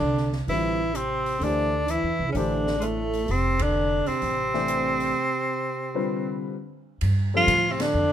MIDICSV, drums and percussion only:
0, 0, Header, 1, 2, 480
1, 0, Start_track
1, 0, Tempo, 466926
1, 1456, Time_signature, 4, 2, 24, 8
1, 8354, End_track
2, 0, Start_track
2, 0, Title_t, "Drums"
2, 177, Note_on_c, 9, 38, 22
2, 280, Note_off_c, 9, 38, 0
2, 333, Note_on_c, 9, 38, 32
2, 436, Note_off_c, 9, 38, 0
2, 494, Note_on_c, 9, 46, 38
2, 597, Note_off_c, 9, 46, 0
2, 975, Note_on_c, 9, 42, 44
2, 1078, Note_off_c, 9, 42, 0
2, 1297, Note_on_c, 9, 46, 31
2, 1400, Note_off_c, 9, 46, 0
2, 1454, Note_on_c, 9, 46, 38
2, 1557, Note_off_c, 9, 46, 0
2, 1934, Note_on_c, 9, 42, 43
2, 2037, Note_off_c, 9, 42, 0
2, 2414, Note_on_c, 9, 46, 35
2, 2516, Note_off_c, 9, 46, 0
2, 2744, Note_on_c, 9, 38, 48
2, 2847, Note_off_c, 9, 38, 0
2, 2894, Note_on_c, 9, 42, 45
2, 2997, Note_off_c, 9, 42, 0
2, 3223, Note_on_c, 9, 46, 29
2, 3326, Note_off_c, 9, 46, 0
2, 3372, Note_on_c, 9, 46, 38
2, 3475, Note_off_c, 9, 46, 0
2, 3695, Note_on_c, 9, 51, 61
2, 3703, Note_on_c, 9, 36, 66
2, 3797, Note_off_c, 9, 51, 0
2, 3806, Note_off_c, 9, 36, 0
2, 4177, Note_on_c, 9, 46, 32
2, 4280, Note_off_c, 9, 46, 0
2, 4336, Note_on_c, 9, 46, 36
2, 4438, Note_off_c, 9, 46, 0
2, 4667, Note_on_c, 9, 38, 27
2, 4770, Note_off_c, 9, 38, 0
2, 4813, Note_on_c, 9, 42, 47
2, 4915, Note_off_c, 9, 42, 0
2, 5141, Note_on_c, 9, 46, 33
2, 5244, Note_off_c, 9, 46, 0
2, 7207, Note_on_c, 9, 51, 58
2, 7310, Note_off_c, 9, 51, 0
2, 7689, Note_on_c, 9, 44, 48
2, 7689, Note_on_c, 9, 51, 65
2, 7792, Note_off_c, 9, 44, 0
2, 7792, Note_off_c, 9, 51, 0
2, 8015, Note_on_c, 9, 51, 57
2, 8020, Note_on_c, 9, 38, 71
2, 8118, Note_off_c, 9, 51, 0
2, 8123, Note_off_c, 9, 38, 0
2, 8354, End_track
0, 0, End_of_file